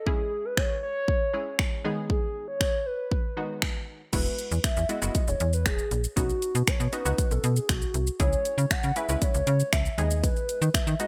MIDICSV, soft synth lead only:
0, 0, Header, 1, 2, 480
1, 0, Start_track
1, 0, Key_signature, 4, "major"
1, 0, Tempo, 508475
1, 62, Time_signature, 4, 2, 24, 8
1, 10452, End_track
2, 0, Start_track
2, 0, Title_t, "Soft synth lead"
2, 0, Program_c, 0, 80
2, 66, Note_on_c, 0, 68, 103
2, 425, Note_on_c, 0, 71, 96
2, 439, Note_off_c, 0, 68, 0
2, 546, Note_on_c, 0, 73, 103
2, 560, Note_off_c, 0, 71, 0
2, 779, Note_off_c, 0, 73, 0
2, 784, Note_on_c, 0, 73, 103
2, 1465, Note_off_c, 0, 73, 0
2, 1987, Note_on_c, 0, 68, 92
2, 2319, Note_off_c, 0, 68, 0
2, 2340, Note_on_c, 0, 73, 115
2, 2698, Note_on_c, 0, 71, 105
2, 2712, Note_off_c, 0, 73, 0
2, 3660, Note_off_c, 0, 71, 0
2, 3907, Note_on_c, 0, 71, 95
2, 4351, Note_off_c, 0, 71, 0
2, 4386, Note_on_c, 0, 76, 91
2, 4607, Note_off_c, 0, 76, 0
2, 4626, Note_on_c, 0, 75, 104
2, 4985, Note_on_c, 0, 73, 90
2, 4999, Note_off_c, 0, 75, 0
2, 5223, Note_off_c, 0, 73, 0
2, 5228, Note_on_c, 0, 71, 85
2, 5337, Note_off_c, 0, 71, 0
2, 5347, Note_on_c, 0, 68, 90
2, 5679, Note_off_c, 0, 68, 0
2, 5824, Note_on_c, 0, 66, 93
2, 6304, Note_on_c, 0, 73, 97
2, 6318, Note_off_c, 0, 66, 0
2, 6537, Note_off_c, 0, 73, 0
2, 6542, Note_on_c, 0, 71, 104
2, 6903, Note_on_c, 0, 69, 91
2, 6918, Note_off_c, 0, 71, 0
2, 7141, Note_on_c, 0, 68, 90
2, 7156, Note_off_c, 0, 69, 0
2, 7263, Note_on_c, 0, 66, 92
2, 7278, Note_off_c, 0, 68, 0
2, 7623, Note_off_c, 0, 66, 0
2, 7740, Note_on_c, 0, 73, 110
2, 8219, Note_on_c, 0, 78, 107
2, 8233, Note_off_c, 0, 73, 0
2, 8461, Note_on_c, 0, 76, 102
2, 8475, Note_off_c, 0, 78, 0
2, 8703, Note_on_c, 0, 73, 119
2, 8717, Note_off_c, 0, 76, 0
2, 9176, Note_off_c, 0, 73, 0
2, 9182, Note_on_c, 0, 76, 107
2, 9420, Note_on_c, 0, 75, 98
2, 9434, Note_off_c, 0, 76, 0
2, 9653, Note_off_c, 0, 75, 0
2, 9659, Note_on_c, 0, 71, 100
2, 10107, Note_off_c, 0, 71, 0
2, 10142, Note_on_c, 0, 76, 102
2, 10365, Note_off_c, 0, 76, 0
2, 10384, Note_on_c, 0, 75, 98
2, 10452, Note_off_c, 0, 75, 0
2, 10452, End_track
0, 0, End_of_file